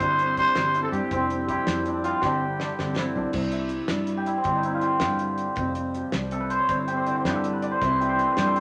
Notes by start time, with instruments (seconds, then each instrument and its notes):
Already playing: steel-string acoustic guitar G3 C4, hammered dulcimer C4 E4, trumpet C5
0.00 fingered electric bass G1, steel-string acoustic guitar G2 G4, hammered dulcimer D4, kick, closed hi-hat
0.19 steel-string acoustic guitar C4, closed hi-hat
0.37 steel-string acoustic guitar G3, hammered dulcimer D4, trumpet C5, kick, closed hi-hat
0.56 fingered electric bass G1, steel-string acoustic guitar G4, muted steel-string acoustic guitar stroke, snare, closed hi-hat
0.75 steel-string acoustic guitar C4, hammered dulcimer E4, closed hi-hat
0.82 trumpet A4
0.91 fingered electric bass G2, steel-string acoustic guitar G3, hammered dulcimer D4, trumpet G4, closed hi-hat
1.11 fingered electric bass F1, steel-string acoustic guitar F2 C4, hammered dulcimer C4, kick, closed hi-hat
1.30 steel-string acoustic guitar C4, closed hi-hat
1.47 steel-string acoustic guitar G3, hammered dulcimer E4, trumpet G4, kick, closed hi-hat
1.67 fingered electric bass F2, steel-string acoustic guitar F3 C4, snare, closed hi-hat
1.86 steel-string acoustic guitar C4, hammered dulcimer D4, closed hi-hat
2.03 steel-string acoustic guitar G3, hammered dulcimer C4, trumpet F4, closed hi-hat
2.22 fingered electric bass G1, steel-string acoustic guitar G2 D3 G3 C4, hammered dulcimer D4, trumpet G4, kick, snare
2.60 steel-string acoustic guitar G3, hammered dulcimer D4, snare
2.79 fingered electric bass G1, steel-string acoustic guitar D3 C4, snare
2.96 steel-string acoustic guitar C4, hammered dulcimer E4, snare
3.16 fingered electric bass B1, steel-string acoustic guitar G3, hammered dulcimer D4
3.33 fingered electric bass C2, steel-string acoustic guitar C3 C4, kick, crash
3.52 steel-string acoustic guitar E4, closed hi-hat
3.69 closed hi-hat
3.88 fingered electric bass G2, steel-string acoustic guitar G3, snare, closed hi-hat
4.07 steel-string acoustic guitar G2, closed hi-hat
4.17 hammered dulcimer G4
4.26 hammered dulcimer E4, closed hi-hat
4.37 hammered dulcimer C4
4.44 fingered electric bass G1, steel-string acoustic guitar G2 C4, hammered dulcimer D4, kick, closed hi-hat
4.55 hammered dulcimer D#4
4.63 steel-string acoustic guitar C4, hammered dulcimer E4, closed hi-hat
4.74 hammered dulcimer F4
4.81 steel-string acoustic guitar D3, hammered dulcimer G4, closed hi-hat
5.00 fingered electric bass G2, steel-string acoustic guitar G3, snare, closed hi-hat
5.19 steel-string acoustic guitar G2, closed hi-hat
5.38 closed hi-hat
5.56 fingered electric bass F1, steel-string acoustic guitar F2 C4, kick, closed hi-hat
5.75 steel-string acoustic guitar C4, closed hi-hat
5.94 steel-string acoustic guitar F3, closed hi-hat
6.12 fingered electric bass C2, steel-string acoustic guitar G3, snare, closed hi-hat
6.31 steel-string acoustic guitar C3, hammered dulcimer A4, closed hi-hat
6.40 hammered dulcimer B4
6.50 hammered dulcimer C5, closed hi-hat
6.59 hammered dulcimer C#5
6.69 fingered electric bass G1, steel-string acoustic guitar G2 C4, hammered dulcimer C5, kick, closed hi-hat
6.78 hammered dulcimer E4
6.87 steel-string acoustic guitar C4, hammered dulcimer G4, closed hi-hat
6.97 hammered dulcimer C5
7.06 steel-string acoustic guitar D3, hammered dulcimer D5, closed hi-hat
7.15 hammered dulcimer C5
7.25 fingered electric bass G2, steel-string acoustic guitar G3, hammered dulcimer B4, snare, closed hi-hat
7.35 hammered dulcimer A4
7.44 steel-string acoustic guitar G2, closed hi-hat
7.53 hammered dulcimer B4
7.62 hammered dulcimer D5, closed hi-hat
7.71 hammered dulcimer C5
7.81 fingered electric bass C2, steel-string acoustic guitar C3 E3 G3 C4 E4, hammered dulcimer B4, kick, closed hi-hat
7.91 hammered dulcimer D4
8.00 steel-string acoustic guitar E4, hammered dulcimer G4, closed hi-hat
8.09 hammered dulcimer C5
8.18 steel-string acoustic guitar E3, hammered dulcimer B4, closed hi-hat
8.25 hammered dulcimer A4
8.31 hammered dulcimer B4
8.37 fingered electric bass G2, steel-string acoustic guitar G3, hammered dulcimer C5, snare, closed hi-hat
8.47 hammered dulcimer A4
8.55 steel-string acoustic guitar G2, hammered dulcimer G4, closed hi-hat